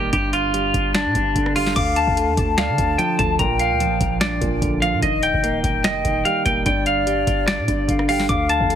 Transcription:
Already playing: D#1 D#3 G3 A#3 D#5
0.13 G1 G2 G4, kick, closed hi-hat
0.33 F4, closed hi-hat
0.54 G3, closed hi-hat
0.74 G1, kick, closed hi-hat
0.94 D4, finger snap, snare, closed hi-hat
1.05 A#2
1.15 G1 G2, kick, closed hi-hat
1.35 G1 D3, kick, closed hi-hat
1.46 cross-stick
1.56 G3 F4, open hi-hat
1.67 snare
1.76 D2 D3 F5 D6, kick, closed hi-hat, crash
1.96 A5, closed hi-hat
2.07 D2, kick
2.17 A3, closed hi-hat
2.28 D#2
2.37 D2 A5, kick, closed hi-hat
2.58 D5 F5, finger snap, snare, closed hi-hat
2.69 D3
2.78 D2 D3, kick, closed hi-hat
2.98 F3 G5, closed hi-hat
3.19 D2 A3 A5, kick, closed hi-hat
3.39 A#1 A#2 G5 A#5, kick, closed hi-hat
3.59 F5, closed hi-hat
3.70 D2
3.80 F3, closed hi-hat
3.85 A#1
4.01 A#1, kick, closed hi-hat
4.21 D4 D5, finger snap, snare, closed hi-hat
4.41 A#1 A#2, kick, closed hi-hat
4.62 A#1 D3, kick, closed hi-hat
4.82 F3 F5, closed hi-hat
4.93 A#2
5.02 D#1 D#3 D#5, kick, closed hi-hat
5.23 G5, closed hi-hat
5.34 D#1, kick
5.43 A#3, closed hi-hat
5.64 D#1 G5, kick, closed hi-hat
5.84 F1 D#5, finger snap, snare, closed hi-hat
6.04 D#1 D#3, kick, closed hi-hat
6.25 G3 F5, closed hi-hat
6.46 D#1 A#3 G5, kick, closed hi-hat
6.66 G1 G2 D5 G5, kick, closed hi-hat
6.86 F5, closed hi-hat
7.07 G3, closed hi-hat
7.27 G1, kick, closed hi-hat
7.48 D4 D5, finger snap, snare, closed hi-hat
7.58 A#2
7.68 G1 G2, kick, closed hi-hat
7.88 G1 D3 F5, kick, closed hi-hat
7.99 cross-stick
8.09 G3 F5 G5, open hi-hat
8.20 snare
8.29 D2 D3 F3 D4 A4 F5 D6, kick, closed hi-hat
8.49 A5, closed hi-hat
8.60 D2, kick
8.70 A3, closed hi-hat

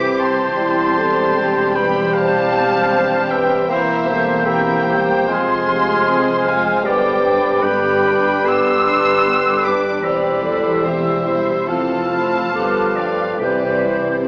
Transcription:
Already playing: C2 E3 C4 G4 C5 B5 D6 G6
0.19 A5 C6
0.57 E1 E2 G3 E4
0.98 A4
1.36 G4
1.74 B4 G5 B5
2.14 C5 F5 A5
2.92 C5
3.30 B4 E5 G5
3.68 E1 E2 E3 A#3 C4 E4 A#4 C5 E5 G6
4.07 G3 A#3 G4 A4 C5
4.45 E3 C4 E4 G4 A#4 E5 G5
4.87 G3 A#3 G4 C5
5.27 F1 F2 F3 G#3 C4 F4 G#4 G#5 C6 F6
5.68 G#3 F4 G4 C5
6.07 F3 C4 G#4
6.46 G#3 F4 C5 F5 G#5
6.84 G1 G2 D3 G3 B3 G4 B4 D5 G5 D6
7.25 G3 D4 B4
7.62 D3 B3 G4 B4 G5 B5
8.05 G3 D4 B4
8.45 D3 B3 G4 B4 C6 E6
8.85 G3 D4 B4
9.26 D3 B3 G4
9.65 G3 D4 B4 B5 D6
10.02 E1 E2 E3 C4 G4 B4 C5 D5 E6
10.42 G3 E4 A4 C5
10.82 E3 C4 G4 C5 E5
11.26 G3 E4 C5
11.68 F1 F2 E3 F3 C4 F4 A4 F5 A5
12.11 F3 A3 E4 C5
12.52 G1 G2 G3 B3 F4 A4 B4 D6
12.96 F3 A3 D4 G4 D5 F5
13.39 C2 C3 E3 G3 C4 G4 B4 C5 D5 G6
13.83 E3 G3 E4 C5

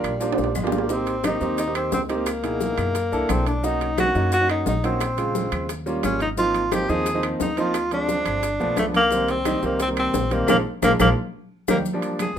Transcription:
Already playing: G3 A#3 D4 F4 A#4
0.04 A#1, high conga, high timbale, claves, maracas
0.20 A#3 D4 F4 G4, high conga, high timbale, maracas
0.32 high timbale
0.38 A#1, low bongo, high conga, maracas
0.44 high timbale
0.55 G#1 G#3, high conga, low timbale, claves, maracas
0.63 A#3 D4 F4 G4, low timbale
0.72 A#3, low bongo, maracas
0.78 low timbale
0.89 A#3 C4 D#4 G4, high bongo, high conga, maracas
1.06 high bongo, high conga, high timbale, maracas
1.24 A#3 C4 D#4 G4, high bongo, high conga, high timbale, low timbale, claves, maracas
1.41 D#2 A#3 C4 D#4 G4, high bongo, high conga, maracas
1.58 D#4, high bongo, high conga, high timbale, maracas
1.67 A#3 C4 D#4 G4
1.75 C4, high bongo, high conga, high timbale, claves, maracas
1.92 C#2 C4, high bongo, low bongo, high conga, low timbale, maracas
2.09 A#3 C4 D#4 G4, high conga, high timbale, maracas
2.26 high bongo, high conga, high timbale, claves, maracas
2.43 B2 D#4 E4 G#4, high bongo, high conga, high timbale, maracas
2.60 high bongo, high conga, low timbale, maracas
2.78 F#2, high bongo, high conga, high timbale, claves, maracas
2.95 high bongo, high conga, high timbale, maracas
3.12 C2 A#3 D4 E4 A4, high bongo, high conga, maracas
3.29 B1 C4, high bongo, low bongo, high conga, high timbale, low timbale, claves, maracas
3.46 D4, high conga, high timbale, maracas
3.63 A#3 C#4 D#4 F#4, high bongo, high conga, maracas
3.81 high bongo, high conga, high timbale, maracas
3.98 A#3 C#4 D#4 F#4, high bongo, high conga, high timbale, low timbale, claves, maracas
4.14 F#2 A#3 C#4 D#4 F#4, high bongo, high conga, maracas
4.32 F#4, high bongo, high conga, high timbale, maracas
4.41 A#3 C#4 D#4 F#4
4.49 D#4, high bongo, high timbale, claves, maracas
4.66 A#1 D#4, high bongo, low bongo, high conga, low timbale, maracas
4.83 A#3 C4 C#4 D#4 F#4, high conga, high timbale, maracas
5.00 high bongo, high conga, high timbale, claves, maracas
5.17 C#3 G#3 C4 F4, high bongo, high conga, high timbale, maracas
5.35 high bongo, high conga, low timbale, maracas
5.52 D#2, high bongo, high conga, high timbale, claves, maracas
5.69 high bongo, high conga, high timbale, maracas
5.86 G3 A#3 C#4 F4, high bongo, high conga, maracas
6.03 G#1 C#4, high bongo, low bongo, high conga, high timbale, low timbale, claves, maracas
6.20 D#4, high conga, high timbale, maracas
6.37 F3 A#3 C4 D#4 F4, high bongo, high conga, maracas
6.54 high bongo, high conga, high timbale, maracas
6.72 F3 A#3 C4 D#4 G4, high bongo, high conga, high timbale, low timbale, claves, maracas
6.88 D#2 F3 A#3 C4 D#4 G#4, high bongo, high conga, maracas
7.06 high bongo, high conga, high timbale, maracas
7.14 F3 A#3 C4 D#4
7.23 high bongo, high conga, high timbale, claves, maracas
7.40 D2 D#4, high bongo, low bongo, high conga, low timbale, maracas
7.57 F3 A#3 C4 D#4 F4, high conga, high timbale, maracas
7.74 high bongo, high conga, high timbale, claves, maracas
7.91 F3 G#3 C4 D4, high bongo, high conga, high timbale, maracas
8.08 high bongo, high conga, low timbale, maracas
8.26 G1, high bongo, high conga, high timbale, claves, maracas
8.43 high bongo, high conga, high timbale, maracas
8.60 B1 F3 A3 B3 D4, high bongo, high conga, maracas
8.77 C2 A3, high bongo, low bongo, high conga, high timbale, low timbale, claves, maracas
8.94 A#3, high conga, high timbale, maracas
9.11 D#3 G3 A#3 C4, high bongo, high conga, maracas
9.28 C4, high bongo, high conga, high timbale, maracas
9.45 D#3 G3 A#3 D#4, high bongo, high conga, high timbale, low timbale, claves, maracas
9.62 C2 D#3 G3 A#3 C4, high bongo, high conga, maracas
9.80 C4, high bongo, high conga, high timbale, maracas
9.88 D#3 G3 A#3 C4
9.97 C4, high bongo, high conga, high timbale, claves, maracas
10.14 A#1, high bongo, low bongo, high conga, low timbale, maracas
10.31 D#3 G3 A#3 C4, high conga, high timbale, maracas
10.48 A#1 F3 G#3 A#3, high bongo, high conga, high timbale, claves, maracas
10.82 A#1 F3 G#3 A#3, high bongo, high conga, high timbale, claves, maracas
11.00 A#1 F3 G#3 A#3, high bongo, high conga, high timbale, claves, maracas
11.68 D#2 D#3 G3 A#3, high bongo, high conga, high timbale, claves, maracas
11.85 high conga, maracas
11.93 F3 G3 A#3 D4
12.02 high conga, high timbale, maracas
12.19 G#4, high conga, high timbale, low timbale, claves, maracas

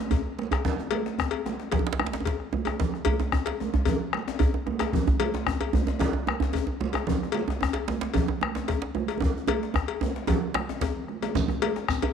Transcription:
0.11 bombo low, cowbell, djembe bass
0.39 bombo rim, high conga
0.51 bombo rim, cowbell, djembe slap, djembe bass
0.65 bombo low, low conga, djembe bass
0.79 djembe slap, high conga, djembe tone
0.91 bombo rim, cowbell, djembe slap, high conga
1.06 djembe slap
1.19 bombo rim, bombo low, djembe bass
1.31 cowbell, djembe slap
1.46 bombo rim, djembe slap, djembe tone, high conga
1.60 djembe slap
1.72 bombo low, cowbell, djembe slap, high conga, djembe bass, low conga
1.79 djembe tone
1.86 bombo rim, djembe slap
1.93 djembe slap
1.99 bombo rim, djembe tone, high conga
2.06 djembe slap
2.13 djembe slap, djembe tone, high conga
2.20 djembe tone
2.25 bombo low, cowbell, djembe slap, djembe bass
2.40 bombo rim, high conga
2.53 djembe tone, high conga
2.65 bombo rim, cowbell, djembe slap, djembe tone, high conga
2.80 bombo low, djembe slap, low conga, djembe bass
2.94 bombo rim, djembe tone
3.05 bombo rim, cowbell, high conga, djembe bass
3.20 bombo rim, djembe slap, djembe tone
3.32 bombo rim, bombo low, djembe tone, djembe bass
3.46 bombo rim, cowbell, djembe slap, high conga
3.60 djembe tone, high conga
3.74 djembe slap, high conga, djembe bass
3.85 bombo low, cowbell, djembe bass, low conga
4.01 djembe slap
4.13 bombo rim, high conga
4.28 djembe slap, djembe tone
4.39 bombo low, cowbell, djembe bass
4.54 djembe tone
4.67 bombo rim, djembe tone, high conga
4.79 bombo rim, cowbell, djembe slap, djembe tone
4.93 bombo low, djembe tone, low conga, djembe bass
5.07 bombo rim, djembe tone, djembe bass
5.20 bombo rim, cowbell, djembe tone, high conga
5.34 djembe slap, djembe tone
5.47 bombo rim, bombo low, djembe tone, djembe bass
5.61 bombo rim, cowbell, djembe tone, high conga
5.73 high conga, djembe tone, djembe bass
5.87 djembe slap, djembe tone, high conga
5.99 bombo low, cowbell, djembe tone, low conga, djembe bass
6.13 djembe slap, djembe tone
6.27 bombo rim, djembe tone, high conga
6.40 djembe slap, djembe tone, djembe bass
6.53 bombo low, cowbell, djembe tone, djembe bass
6.67 djembe tone
6.81 djembe tone, high conga
6.93 bombo rim, cowbell, djembe slap, djembe tone
7.07 bombo low, low conga, djembe bass
7.23 bombo rim, djembe tone
7.32 bombo rim, cowbell, high conga
7.48 bombo rim, djembe slap, djembe tone
7.61 bombo rim, bombo low, djembe tone, djembe bass
7.73 bombo rim, cowbell, djembe slap, high conga
7.88 djembe slap, high conga, djembe tone
8.01 djembe slap, high conga
8.03 djembe slap
8.14 bombo low, cowbell, djembe tone, low conga, djembe bass
8.28 djembe slap, djembe tone
8.41 bombo rim, high conga, djembe tone
8.55 djembe slap, djembe tone
8.68 bombo low, cowbell, djembe slap, djembe bass
8.82 djembe slap
8.95 bombo rim, djembe tone, high conga
9.08 cowbell, djembe slap
9.20 bombo low, djembe tone, high conga, low conga, djembe bass
9.37 djembe tone
9.48 cowbell, djembe slap, djembe tone, high conga
9.63 djembe slap, high conga
9.74 bombo rim, bombo low, djembe slap, djembe tone, djembe bass
9.88 cowbell, djembe slap, high conga
10.01 djembe tone, high conga
10.03 djembe tone
10.16 djembe slap, high conga
10.27 bombo rim, bombo low, cowbell, djembe tone, djembe bass, low conga
10.54 bombo rim, djembe slap, high conga
10.69 bombo rim, djembe slap, djembe tone
10.81 bombo low, cowbell, djembe slap, djembe bass
10.96 low conga
11.08 bombo rim, high conga
11.22 cowbell, djembe slap, high conga
11.35 bombo low, djembe tone, djembe bass, low conga, shekere
11.48 bombo rim, djembe tone
11.62 bombo rim, cowbell, high conga
11.76 bombo rim, djembe slap
11.88 bombo rim, bombo low, djembe bass, shekere
12.02 bombo rim, cowbell, high conga, djembe tone

